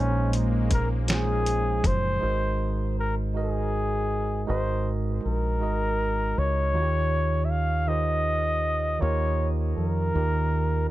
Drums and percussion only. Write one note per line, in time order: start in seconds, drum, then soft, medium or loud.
0.33 closed hi-hat medium
0.71 kick medium
0.71 closed hi-hat medium
1.08 snare loud
1.08 closed hi-hat medium
1.46 closed hi-hat medium
1.84 kick medium
1.84 closed hi-hat medium